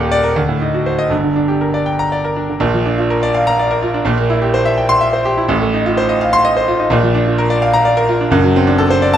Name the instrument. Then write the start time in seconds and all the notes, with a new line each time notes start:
grand piano
Already playing: D#1 D#2 A#2 A#3
0.00 G4
0.12 D5
0.24 A#4
0.36 D2
0.49 A2
0.61 D#4
0.74 F#4
0.86 C5
0.99 D#5
1.10 G1 G2
1.24 D3
1.36 D4
1.48 G4
1.61 A#4
1.74 D5
1.86 G5
1.99 A#5
2.12 D5
2.24 A#4
2.36 D4
2.49 D3
2.60 A#1 A#2
2.74 F3
2.86 D4
2.98 F4
3.10 A#4
3.23 D5
3.34 F5
3.47 A#5
3.59 D5
3.71 A#4
3.82 F4
3.94 D4
4.05 A#1 A#2
4.18 A#3
4.30 E4
4.42 G4
4.54 C5
4.65 E5
4.78 G5
4.89 C6
5.01 E5
5.13 C5
5.25 G4
5.38 E4
5.48 A1 A2
5.62 A3
5.74 D#4
5.86 F4
5.97 C5
6.09 D#5
6.21 F5
6.33 C6
6.45 D#5
6.57 C5
6.68 F4
6.80 D#4
6.90 A#1 A#2
7.03 F3
7.15 D4
7.27 F4
7.38 A#4
7.50 D5
7.62 F5
7.74 A#5
7.85 D5
7.97 A#4
8.09 F4
8.21 D4
8.31 F#1 F#2
8.44 F#3
8.56 C4
8.67 D4
8.78 A4
8.90 C5
9.02 D5
9.14 A5